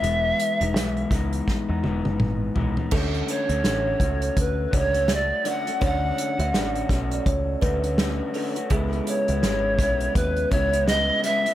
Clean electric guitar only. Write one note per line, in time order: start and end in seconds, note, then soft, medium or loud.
0.02 0.60 E3 medium
0.02 0.61 G#3 medium
0.02 0.60 B3 medium
0.60 0.74 G#3 soft
0.60 0.75 B3 medium
0.60 0.75 D#4 medium
0.75 1.09 E3 medium
0.75 1.10 G#3 medium
0.75 1.11 B3 medium
1.10 1.69 E3 medium
1.10 1.69 G#3 medium
1.10 1.69 B3 medium
1.10 1.67 D#4 medium
1.69 1.83 G#3 soft
1.69 1.84 B3 soft
1.69 1.84 D#4 medium
1.83 2.54 E3 medium
1.83 2.55 G#3 medium
1.83 2.56 B3 medium
1.83 2.57 D#4 medium
2.55 2.78 E3 medium
2.55 2.78 G#3 medium
2.55 2.78 B3 medium
2.55 2.76 D#4 medium
2.77 2.92 G#3 soft
2.77 2.93 B3 soft
2.77 2.92 D#4 soft
2.92 3.50 D3 medium
2.92 3.51 A3 medium
2.92 3.50 C#4 loud
2.92 3.48 F#4 medium
3.50 3.64 A3 soft
3.50 3.64 C#4 soft
3.50 3.65 F#4 medium
3.64 4.01 D3 medium
3.64 4.00 A3 medium
3.64 4.01 C#4 medium
3.64 4.02 F#4 medium
4.01 4.71 A3 medium
4.01 4.73 C#4 medium
4.01 4.73 F#4 medium
4.71 4.94 D3 medium
4.71 4.95 A3 medium
4.71 4.95 C#4 medium
4.71 4.93 F#4 medium
4.94 5.08 A3 soft
4.94 5.10 C#4 soft
4.94 5.09 F#4 soft
5.09 5.44 A3 medium
5.09 5.45 F#4 medium
5.44 5.67 D3 medium
5.44 5.67 A3 medium
5.44 5.66 C#4 medium
5.44 5.64 F#4 medium
5.65 5.79 A3 soft
5.65 5.80 C#4 soft
5.65 5.81 F#4 medium
5.80 6.39 D3 medium
5.80 6.39 A3 medium
5.80 6.38 C#4 medium
5.80 6.37 F#4 medium
6.38 6.52 A3 soft
6.38 6.53 C#4 soft
6.38 6.53 F#4 medium
6.53 6.90 D3 medium
6.53 6.89 A3 medium
6.53 6.90 C#4 medium
6.53 6.91 F#4 medium
6.90 7.62 A3 medium
6.90 7.63 C#4 medium
6.90 7.64 F#4 medium
7.62 7.84 D3 medium
7.62 7.85 A3 medium
7.62 7.84 C#4 medium
7.62 7.83 F#4 medium
7.84 7.98 A3 soft
7.84 7.98 C#4 soft
7.84 7.99 F#4 medium
7.98 8.32 D3 medium
7.98 8.33 A3 medium
7.98 8.34 C#4 medium
7.98 8.35 F#4 medium
8.33 8.56 D3 medium
8.33 8.56 A3 medium
8.33 8.56 C#4 medium
8.33 8.55 F#4 medium
8.56 8.70 A3 soft
8.56 8.70 C#4 soft
8.56 8.71 F#4 medium
8.69 9.28 C#3 medium
8.69 9.29 G#3 medium
8.69 9.28 B3 medium
8.69 9.27 E4 loud
9.28 9.42 G#3 medium
9.28 9.42 B3 medium
9.28 9.43 E4 medium
9.42 9.78 C#3 medium
9.42 9.79 G#3 medium
9.42 9.79 B3 medium
9.42 9.80 E4 medium
9.79 10.49 C#3 medium
9.79 10.51 G#3 medium
9.79 10.52 B3 medium
9.79 10.52 E4 medium
10.50 10.73 C#3 medium
10.50 10.74 G#3 medium
10.50 10.72 B3 medium
10.50 10.71 E4 medium
10.72 10.86 G#3 soft
10.72 10.87 B3 soft
10.72 10.87 E4 medium
10.87 11.21 C#3 medium
10.87 11.22 G#3 medium
10.87 11.23 B3 medium
10.87 11.24 E4 medium
11.23 11.45 C#3 medium
11.23 11.46 G#3 medium
11.23 11.45 B3 medium
11.23 11.43 E4 medium
11.44 11.54 G#3 soft
11.44 11.54 B3 soft
11.44 11.54 E4 medium